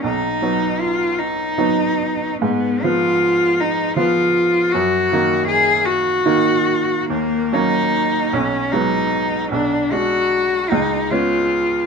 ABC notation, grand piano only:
X:1
M:6/8
L:1/8
Q:3/8=51
K:Ebm
V:1 name="Grand piano" clef=bass
=B,,, [^F,=B,^D]3 [F,B,D]2 | A,, [F,C]3 [F,C]2 | G,, [E,B,E]3 [E,B,E]2 | [K:G#dor] D,, [F,A,C]2 B,,, [F,G,B,]2 |
B,,, [G,=D]2 C,, [G,B,C]2 |]